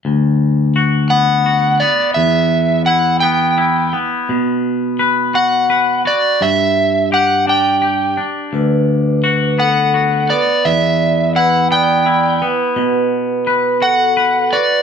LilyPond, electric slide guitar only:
\new Staff \with { instrumentName = "Electric slide guitar" } { \time 6/8 \key d \major \tempo 4. = 57 r4. fis''4 d''8 | e''4 fis''8 g''4 r8 | r4. fis''4 d''8 | e''4 fis''8 g''4 r8 |
r4. fis''4 d''8 | e''4 fis''8 g''4 r8 | r4. fis''4 d''8 | }